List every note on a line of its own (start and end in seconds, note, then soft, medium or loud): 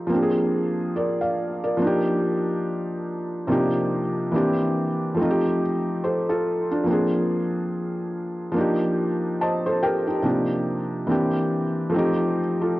0.00 0.07 F3 medium
0.00 0.13 A3 medium
0.00 0.12 C4 medium
0.00 0.13 D#4 medium
0.00 0.12 G4 medium
0.07 1.74 F3 medium
0.07 1.76 A#3 medium
0.12 1.77 C4 medium
0.12 1.78 D4 medium
0.17 0.21 G4 medium
0.23 1.82 G#4 medium
0.96 1.19 A#4 medium
0.96 1.19 D5 medium
1.21 1.61 D5 medium
1.21 1.60 F5 medium
1.64 2.03 A#4 medium
1.64 2.03 D5 medium
1.77 3.44 F3 medium
1.77 3.45 A#3 medium
1.82 3.46 D4 medium
1.82 3.48 D#4 medium
1.87 3.49 G4 medium
3.47 4.32 C3 medium
3.47 4.33 F3 medium
3.47 4.31 A#3 medium
3.47 4.33 D4 medium
3.47 4.34 D#4 medium
3.52 4.34 G4 medium
4.32 5.17 E3 medium
4.32 5.17 A#3 medium
4.32 5.17 C4 medium
4.32 5.18 D4 medium
4.36 5.19 G4 medium
5.14 6.81 F3 medium
5.14 6.83 A3 medium
5.19 6.84 C4 medium
5.19 5.61 D#4 medium
5.24 5.28 F4 medium
5.30 5.65 G4 medium
6.04 6.26 A4 medium
6.04 6.26 C5 medium
6.29 6.68 F4 medium
6.29 6.68 A4 medium
6.71 6.89 D4 medium
6.71 7.10 F4 medium
6.84 8.50 F3 medium
6.84 8.52 A#3 medium
6.88 8.53 C4 medium
6.88 8.54 D4 medium
6.92 8.55 G#4 medium
8.52 10.19 F3 medium
8.52 10.20 A#3 medium
8.56 9.39 D4 medium
8.56 9.40 D#4 medium
8.60 9.41 G4 medium
9.41 9.64 C5 medium
9.41 9.64 D#5 medium
9.41 9.80 A5 medium
9.66 9.82 A4 medium
9.66 9.82 C5 medium
9.83 10.06 G4 medium
9.83 10.06 A#4 medium
9.83 10.22 G5 medium
10.07 10.24 D#4 soft
10.07 10.25 G4 medium
10.22 11.08 C3 medium
10.22 11.08 F3 medium
10.22 11.06 A#3 medium
10.22 11.09 D4 medium
10.22 11.09 D#4 medium
10.26 11.10 G4 medium
11.07 11.92 E3 medium
11.07 11.93 A#3 medium
11.07 11.93 C4 medium
11.07 11.94 D4 medium
11.12 11.95 G4 medium
11.90 12.80 F3 medium
11.90 12.80 A3 medium
11.94 12.80 C4 medium
11.94 12.80 D#4 medium
11.99 12.37 G4 medium
12.61 12.80 F4 medium
12.61 12.80 A4 medium